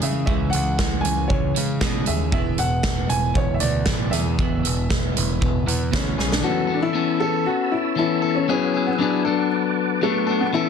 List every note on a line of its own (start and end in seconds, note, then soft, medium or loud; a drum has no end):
0.00 0.25 C#3 medium
0.00 0.28 E3 medium
0.00 0.25 E3 medium
0.00 0.53 G#3 medium
0.00 1.04 C#4 medium
0.00 2.08 G#4 medium
0.00 0.24 E5 medium
0.00 closed hi-hat medium
0.26 0.50 C#2 medium
0.26 0.52 C#3 medium
0.26 0.52 E3 medium
0.26 0.79 E3 medium
0.26 0.52 G#3 medium
0.26 0.53 E5 medium
0.26 kick loud
0.50 0.76 C#3 medium
0.50 0.77 E3 medium
0.50 1.56 G#3 medium
0.50 1.05 F#5 loud
0.50 closed hi-hat medium
0.54 0.76 C#2 medium
0.78 1.02 C#2 medium
0.78 1.02 C#3 medium
0.78 1.02 E3 medium
0.78 1.32 E3 medium
0.78 kick loud
0.78 snare loud
1.01 1.27 C#3 medium
1.01 1.28 E3 medium
1.01 1.29 G#5 medium
1.01 closed hi-hat medium
1.05 1.28 C#2 medium
1.05 1.82 C#4 medium
1.28 1.53 C#2 medium
1.28 1.53 C#3 medium
1.28 1.53 E3 medium
1.28 1.53 C#5 medium
1.28 kick medium
1.32 4.82 E3 medium
1.55 1.79 C#3 medium
1.55 1.79 E3 medium
1.55 2.33 G#3 medium
1.55 closed hi-hat medium
1.81 2.04 B2 medium
1.81 2.05 C#3 medium
1.81 2.05 E3 medium
1.81 2.06 G#3 medium
1.81 2.34 C#4 medium
1.81 kick loud
1.81 snare loud
2.06 2.31 D#2 medium
2.06 2.30 C#3 medium
2.06 2.30 E3 medium
2.06 4.12 G#4 medium
2.06 2.31 E5 medium
2.06 closed hi-hat medium
2.32 2.56 E1 medium
2.32 2.57 E2 medium
2.32 2.57 B2 medium
2.32 2.57 E3 medium
2.32 2.59 B3 medium
2.32 2.60 E5 medium
2.32 kick loud
2.58 2.81 E1 medium
2.58 2.82 E2 medium
2.58 2.82 B2 medium
2.58 2.83 B3 medium
2.58 3.12 F#5 loud
2.58 closed hi-hat medium
2.83 3.07 E1 medium
2.83 3.07 E2 medium
2.83 3.07 B2 medium
2.83 3.36 B3 medium
2.83 kick medium
2.83 snare medium
3.09 3.33 E1 medium
3.09 3.33 E2 medium
3.09 3.33 B2 medium
3.09 3.88 E4 medium
3.09 3.34 G#5 loud
3.09 closed hi-hat medium
3.34 3.58 E1 medium
3.34 3.58 E2 medium
3.34 3.58 B2 medium
3.34 3.62 B3 medium
3.34 3.53 C#5 medium
3.34 kick medium
3.54 3.62 E5 medium
3.60 3.85 D2 medium
3.60 3.84 E2 medium
3.60 3.85 B2 medium
3.60 4.38 B3 medium
3.60 4.09 D5 medium
3.60 closed hi-hat medium
3.86 4.11 E2 medium
3.86 4.12 B2 medium
3.86 4.12 E3 medium
3.86 5.15 E4 medium
3.86 kick loud
3.86 snare loud
4.11 4.37 E2 medium
4.11 4.36 E2 medium
4.11 4.37 B2 medium
4.11 5.41 G#4 medium
4.11 5.88 E5 medium
4.11 snare soft
4.11 closed hi-hat medium
4.39 4.61 E1 medium
4.39 4.63 E2 medium
4.39 4.64 B2 medium
4.39 4.64 E3 medium
4.39 4.62 B3 medium
4.39 kick loud
4.63 4.88 E1 medium
4.63 4.88 E2 medium
4.63 4.88 B2 medium
4.63 4.88 B3 medium
4.63 closed hi-hat medium
4.90 5.13 E1 medium
4.90 5.13 E2 medium
4.90 5.14 B2 medium
4.90 5.41 B3 medium
4.90 kick loud
4.90 snare loud
5.16 5.39 E1 medium
5.16 5.39 E2 medium
5.16 5.39 B2 medium
5.16 5.92 E4 medium
5.16 closed hi-hat medium
5.41 5.64 E1 medium
5.41 5.65 E2 medium
5.41 5.64 B2 medium
5.41 5.65 B3 medium
5.41 kick loud
5.66 5.90 E2 medium
5.66 5.90 B2 medium
5.66 6.41 B3 medium
5.66 closed hi-hat medium
5.91 6.16 D2 medium
5.91 6.16 E2 medium
5.91 6.16 B2 medium
5.91 6.17 E3 medium
5.91 6.29 C#4 medium
5.91 6.42 E4 medium
5.91 kick loud
5.91 snare loud
6.18 6.41 B1 medium
6.18 6.41 E2 medium
6.18 6.42 B2 medium
6.18 6.44 G#4 medium
6.18 snare medium
6.32 6.45 D4 medium
6.32 snare medium
6.41 6.92 E3 medium
6.41 6.70 B3 medium
6.41 6.68 C#4 medium
6.41 6.76 F#4 loud
6.41 6.66 A4 medium
6.45 8.47 C#5 medium
6.45 8.47 A5 medium
6.45 8.47 B5 medium
6.45 9.23 E6 medium
6.67 6.94 B3 medium
6.67 6.94 C#4 medium
6.67 6.94 A4 medium
6.74 6.82 D4 medium
6.82 7.22 E4 loud
6.93 7.45 E3 medium
6.93 7.22 B3 medium
6.93 7.21 C#4 loud
6.93 7.19 A4 medium
7.20 7.97 B3 medium
7.20 7.97 C#4 medium
7.20 7.98 A4 medium
7.20 7.47 A4 loud
7.46 7.72 F#4 loud
7.72 7.97 E4 medium
7.96 8.46 E3 medium
7.96 8.24 B3 medium
7.96 8.22 C#4 medium
7.96 8.34 E4 loud
7.96 8.21 A4 medium
8.22 8.48 B3 medium
8.22 8.47 C#4 medium
8.22 8.46 A4 medium
8.35 8.48 C#4 medium
8.48 8.97 F#3 medium
8.48 8.76 B3 loud
8.48 8.88 C#4 loud
8.48 8.74 E4 medium
8.48 8.73 G#4 loud
8.48 10.69 B4 medium
8.48 10.51 F#5 medium
8.48 9.25 G#5 medium
8.74 8.99 B3 medium
8.74 9.00 E4 medium
8.74 9.01 G#4 medium
8.87 8.92 B3 medium
8.98 9.23 F#3 medium
8.98 9.26 B3 loud
8.98 9.47 D4 medium
8.98 9.24 E4 medium
8.98 9.25 G#4 loud
9.25 10.00 F#3 medium
9.25 10.02 B3 medium
9.25 10.02 D4 medium
9.25 10.03 A4 medium
9.25 10.69 A5 medium
9.25 10.52 D6 medium
10.02 10.51 F#3 medium
10.02 10.42 A3 medium
10.02 10.30 B3 medium
10.02 10.28 D4 medium
10.02 10.26 A4 medium
10.27 10.53 B3 medium
10.27 10.52 D4 medium
10.27 10.51 A4 medium
10.40 10.53 B3 medium
10.53 10.69 E3 medium
10.53 10.69 B3 medium
10.53 10.69 C#4 medium
10.53 10.69 E4 loud
10.53 10.69 A4 loud
10.53 10.69 E5 medium
10.53 10.69 C#6 medium